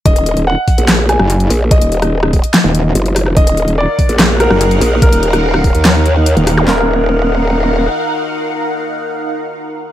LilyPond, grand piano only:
\new Staff \with { instrumentName = "Grand piano" } { \time 4/4 \key ees \minor \tempo 4 = 145 ees''4 ges''4. aes''4. | ees''1 | ees''4 d''4. bes'4. | bes'1 |
bes'1~ | bes'1 | }